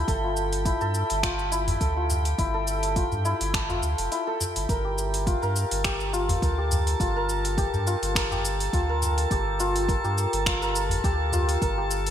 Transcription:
Already playing: santur E4, synth texture G4 G5
0.08 sub bass G1, santur A4, kick, open hi-hat, cabasa
0.24 santur F4
0.37 cabasa
0.53 open hi-hat, cabasa
0.65 santur E4, kick, open hi-hat, cabasa
0.81 sub bass G2, santur A4, cabasa
0.94 cabasa
1.10 sub bass G1, open hi-hat, cabasa
1.23 santur F4, finger snap, kick, open hi-hat, cabasa
1.39 cabasa
1.52 santur E4, cabasa
1.67 open hi-hat, udu, cabasa
1.81 sub bass D2, santur A4, kick, open hi-hat, cabasa
1.97 santur F4
2.10 udu, cabasa
2.25 open hi-hat, cabasa
2.38 sub bass G1, santur E4, kick, open hi-hat, cabasa
2.54 santur A4
2.67 cabasa
2.83 open hi-hat, cabasa
2.96 santur F4, kick, open hi-hat, cabasa
3.12 sub bass G2, udu, cabasa
3.25 santur E4, cabasa
3.41 sub bass G1, open hi-hat, cabasa
3.54 santur A4, finger snap, kick, open hi-hat, cabasa
3.69 santur F4, udu, cabasa
3.83 sub bass D2, cabasa
3.98 sub bass F1, open hi-hat, cabasa
4.12 santur E4, open hi-hat, cabasa
4.27 santur A4
4.41 udu, cabasa
4.56 sub bass G1, open hi-hat, cabasa
4.69 sub bass G1, synth texture A4 A5, santur A#4, kick, open hi-hat, cabasa
4.85 santur G4
4.98 cabasa
5.14 open hi-hat, cabasa
5.27 santur F4, kick, open hi-hat, cabasa
5.42 sub bass G2, santur A#4, cabasa
5.56 cabasa
5.71 sub bass G1, open hi-hat, cabasa
5.84 santur G4, finger snap, kick, open hi-hat, cabasa
6.00 cabasa
6.13 santur F4, cabasa
6.29 open hi-hat, udu, cabasa
6.42 sub bass D2, santur A#4, kick, open hi-hat, cabasa
6.58 santur G4
6.71 udu, cabasa
6.87 open hi-hat, cabasa
7.00 sub bass G1, santur F4, kick, open hi-hat, cabasa
7.16 santur A#4
7.29 cabasa
7.45 open hi-hat, cabasa
7.58 santur G4, kick, open hi-hat, cabasa
7.74 sub bass G2, udu, cabasa
7.87 santur F4, cabasa
8.02 sub bass G1, open hi-hat, cabasa
8.15 santur A#4, finger snap, kick, open hi-hat, cabasa
8.31 santur G4, udu, cabasa
8.45 cabasa
8.60 open hi-hat, cabasa
8.73 sub bass D2, santur F4, kick, open hi-hat, cabasa
8.89 santur A#4
9.02 udu, cabasa
9.18 open hi-hat, cabasa
9.31 sub bass G1, santur G4, kick, open hi-hat, cabasa
9.60 santur F4, cabasa
9.76 open hi-hat, cabasa
9.89 santur A#4, kick, open hi-hat, cabasa
10.04 sub bass G2, santur G4, cabasa
10.18 cabasa
10.33 sub bass G1, open hi-hat, cabasa
10.46 santur F4, finger snap, kick, open hi-hat, cabasa
10.62 santur A#4, cabasa
10.75 cabasa
10.89 open hi-hat, udu, cabasa
11.04 sub bass D2, santur G4, kick, open hi-hat, cabasa
11.32 santur F4, udu, cabasa
11.49 open hi-hat, cabasa
11.62 sub bass G1, santur A#4, kick, open hi-hat, cabasa
11.78 santur G4
11.91 cabasa
12.07 open hi-hat, cabasa

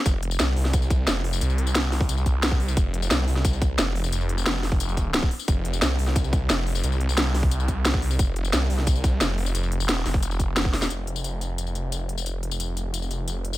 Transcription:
0.06 detuned saw bass F1, kick, closed hi-hat, tambourine
0.23 closed hi-hat
0.31 tambourine
0.40 detuned saw bass C2, snare, closed hi-hat, tambourine
0.56 detuned saw bass C2, open hi-hat
0.65 snare
0.73 kick, closed hi-hat, tambourine
0.82 tambourine
0.90 kick, closed hi-hat, tambourine
1.07 detuned saw bass F1, snare, closed hi-hat, tambourine
1.24 open hi-hat
1.33 tambourine
1.41 detuned saw bass C2, closed hi-hat, tambourine
1.50 tambourine
1.58 closed hi-hat
1.67 tambourine
1.75 snare, closed hi-hat, tambourine
1.92 snare, open hi-hat
2.01 kick
2.09 closed hi-hat, tambourine
2.18 tambourine
2.26 kick, closed hi-hat, tambourine
2.43 snare, closed hi-hat, tambourine
2.51 kick
2.60 open hi-hat
2.68 tambourine
2.77 detuned saw bass F1, kick, closed hi-hat, tambourine
2.94 closed hi-hat
3.02 tambourine
3.11 detuned saw bass C2, snare, closed hi-hat, tambourine
3.28 detuned saw bass C2, open hi-hat
3.36 snare
3.45 kick, closed hi-hat, tambourine
3.53 tambourine
3.62 kick, closed hi-hat, tambourine
3.79 detuned saw bass F1, snare, closed hi-hat, tambourine
3.95 open hi-hat
4.04 tambourine
4.12 detuned saw bass F1, closed hi-hat, tambourine
4.21 tambourine
4.29 closed hi-hat
4.38 tambourine
4.46 detuned saw bass F1, snare, closed hi-hat, tambourine
4.63 snare, open hi-hat
4.72 kick
4.80 closed hi-hat, tambourine
4.89 tambourine
4.97 kick, closed hi-hat, tambourine
5.14 snare, closed hi-hat, tambourine
5.23 kick
5.31 open hi-hat
5.39 tambourine
5.48 detuned saw bass F1, kick, closed hi-hat, tambourine
5.65 closed hi-hat
5.73 tambourine
5.82 detuned saw bass C2, snare, closed hi-hat, tambourine
5.99 detuned saw bass C2, open hi-hat
6.07 snare
6.16 kick, closed hi-hat, tambourine
6.24 tambourine
6.33 kick, closed hi-hat, tambourine
6.50 detuned saw bass F1, snare, closed hi-hat, tambourine
6.67 open hi-hat
6.75 tambourine
6.84 detuned saw bass C2, closed hi-hat, tambourine
6.92 tambourine
7.01 closed hi-hat
7.09 tambourine
7.17 snare, closed hi-hat, tambourine
7.34 snare, open hi-hat
7.43 kick
7.51 closed hi-hat, tambourine
7.60 tambourine
7.68 kick, closed hi-hat, tambourine
7.85 snare, closed hi-hat, tambourine
7.94 kick
8.02 open hi-hat
8.11 tambourine
8.19 detuned saw bass F1, kick, closed hi-hat, tambourine
8.36 closed hi-hat
8.45 tambourine
8.53 detuned saw bass C2, snare, closed hi-hat, tambourine
8.70 detuned saw bass C2, open hi-hat
8.78 snare
8.87 kick, closed hi-hat, tambourine
8.95 tambourine
9.04 kick, closed hi-hat, tambourine
9.21 detuned saw bass F1, snare, closed hi-hat, tambourine
9.38 open hi-hat
9.46 tambourine
9.55 detuned saw bass F1, closed hi-hat, tambourine
9.63 tambourine
9.72 closed hi-hat
9.80 tambourine
9.89 snare, closed hi-hat, tambourine
10.06 detuned saw bass F1, snare, open hi-hat, tambourine
10.14 kick
10.23 closed hi-hat, tambourine
10.31 tambourine
10.40 kick, closed hi-hat, tambourine
10.56 detuned saw bass F1, snare, closed hi-hat, tambourine
10.65 kick
10.73 snare, open hi-hat
10.82 snare, tambourine
10.90 detuned saw bass F1, closed hi-hat, tambourine
11.07 closed hi-hat
11.16 tambourine
11.24 closed hi-hat, tambourine
11.41 closed hi-hat, tambourine
11.58 closed hi-hat, tambourine
11.67 tambourine
11.75 closed hi-hat, tambourine
11.92 closed hi-hat, tambourine
12.09 closed hi-hat
12.18 tambourine
12.26 closed hi-hat, tambourine
12.43 closed hi-hat
12.51 tambourine
12.60 closed hi-hat, tambourine
12.77 closed hi-hat, tambourine
12.94 closed hi-hat, tambourine
13.02 tambourine
13.11 closed hi-hat, tambourine
13.28 closed hi-hat, tambourine
13.45 closed hi-hat
13.53 tambourine

